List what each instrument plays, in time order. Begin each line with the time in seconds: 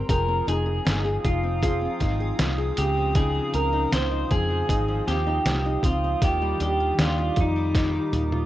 Already playing: nylon-string guitar C4 G4, ambient pad A#5
0.09 fingered electric bass F1, nylon-string guitar F3 G#4, ambient pad C4 F5 D#6, clean electric guitar A#4, kick, closed hi-hat
0.28 nylon-string guitar C4
0.47 fingered electric bass F1, nylon-string guitar D#4, clean electric guitar G#4, closed hi-hat
0.66 nylon-string guitar G#4
0.85 fingered electric bass G1, nylon-string guitar D#4, snare, closed hi-hat
1.05 nylon-string guitar G#4
1.24 fingered electric bass F1, nylon-string guitar D#4, clean electric guitar F4, kick, closed hi-hat
1.43 nylon-string guitar C4
1.62 nylon-string guitar F3 G#4, clean electric guitar F4, kick, closed hi-hat
1.81 nylon-string guitar C4
2.00 fingered electric bass G#1, nylon-string guitar D#4, kick, snare, closed hi-hat
2.20 nylon-string guitar G#4
2.39 fingered electric bass C2, nylon-string guitar D#4, snare, closed hi-hat
2.58 nylon-string guitar G#4
2.77 fingered electric bass C#2, nylon-string guitar C#3, clean electric guitar G4, closed hi-hat
2.97 nylon-string guitar F3
3.15 nylon-string guitar C#3 D#4, clean electric guitar G#4, kick, closed hi-hat
3.35 nylon-string guitar F3
3.54 fingered electric bass C#2, nylon-string guitar C4, clean electric guitar A#4, closed hi-hat
3.73 nylon-string guitar D#4
3.92 fingered electric bass C#2, nylon-string guitar C4, clean electric guitar C5, snare, closed hi-hat
4.11 nylon-string guitar D#4
4.31 fingered electric bass F2, nylon-string guitar C4, clean electric guitar G#4, kick, closed hi-hat
4.50 nylon-string guitar F3
4.69 fingered electric bass G#1, nylon-string guitar D#4, kick, closed hi-hat
4.88 nylon-string guitar F3
5.07 fingered electric bass D#2, nylon-string guitar C4, clean electric guitar G4, snare, closed hi-hat
5.27 nylon-string guitar D#4
5.46 fingered electric bass C2, nylon-string guitar C4, snare, closed hi-hat
5.66 nylon-string guitar D#4
5.83 fingered electric bass C#2, nylon-string guitar C4, clean electric guitar F4, kick, closed hi-hat
6.04 nylon-string guitar F3
6.21 fingered electric bass D#2, nylon-string guitar D#3 F4, ambient pad G4 D6, clean electric guitar G4, kick, closed hi-hat
6.42 nylon-string guitar G3
6.60 fingered electric bass D#2, nylon-string guitar D4, clean electric guitar G4, closed hi-hat
6.80 nylon-string guitar F4
6.98 fingered electric bass D#2, nylon-string guitar D4, clean electric guitar F4, snare, closed hi-hat
7.18 nylon-string guitar F4
7.36 fingered electric bass F2, kick, closed hi-hat
7.40 clean electric guitar D#4
7.56 nylon-string guitar G3
7.75 nylon-string guitar D#3 F4, kick, snare, closed hi-hat
7.95 nylon-string guitar G3
8.13 fingered electric bass D#2, closed hi-hat, high tom
8.32 nylon-string guitar F4, high tom